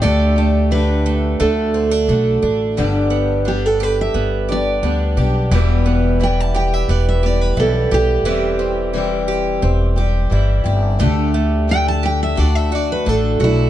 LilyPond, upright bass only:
\new Staff \with { instrumentName = "Upright bass" } { \clef bass \time 4/4 \key g \major \tempo 4 = 88 d,2 d,4 b,,8 a,,8 | g,,2 g,,4 d,8 b,,8 | e,,2 e,,4 b,,8 b,,8 | e,,2 e,,4 g,,8 g,,8 |
d,2 d,4 a,,8 b,,8 | }